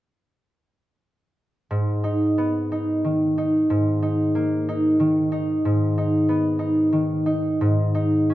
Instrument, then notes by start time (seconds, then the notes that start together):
harp
1.71 G#2
2.04 D#4
2.38 B3
2.72 D#4
3.04 D#3
3.38 D#4
3.70 G#2
4.03 D#4
4.35 A#3
4.69 D#4
5.00 D#3
5.32 D#4
5.65 G#2
5.98 D#4
6.29 B3
6.59 D#4
6.92 D#3
7.26 D#4
7.61 G#2
7.95 D#4
8.30 C#4